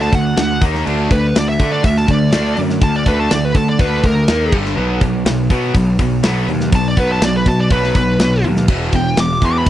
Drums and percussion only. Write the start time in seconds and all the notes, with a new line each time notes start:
0.01 snare
0.13 kick, open hi-hat
0.37 snare, open hi-hat
0.62 kick, open hi-hat
0.75 snare
0.87 crash
1.11 kick, open hi-hat
1.36 snare, open hi-hat
1.60 kick, open hi-hat
1.84 kick, open hi-hat
1.97 snare
2.08 kick, open hi-hat
2.32 snare, open hi-hat
2.57 open hi-hat
2.70 snare
2.81 kick, open hi-hat
3.06 kick, open hi-hat
3.31 snare, open hi-hat
3.54 kick, open hi-hat
3.79 kick, open hi-hat
4.04 kick, open hi-hat
4.28 snare, open hi-hat
4.52 kick, crash
4.65 snare
5.01 kick, open hi-hat
5.26 snare, open hi-hat
5.50 kick, open hi-hat
5.74 kick, open hi-hat
5.99 kick, open hi-hat
6.23 snare, open hi-hat
6.49 open hi-hat
6.60 snare
6.72 kick, open hi-hat
6.97 kick, open hi-hat
7.21 snare, open hi-hat
7.46 kick, open hi-hat
7.70 kick, open hi-hat
7.84 snare
7.95 kick, open hi-hat
8.19 snare, open hi-hat
8.44 open hi-hat
8.56 snare
8.68 kick, crash
8.92 kick, open hi-hat
9.17 snare, open hi-hat
9.41 kick, open hi-hat
9.66 kick, open hi-hat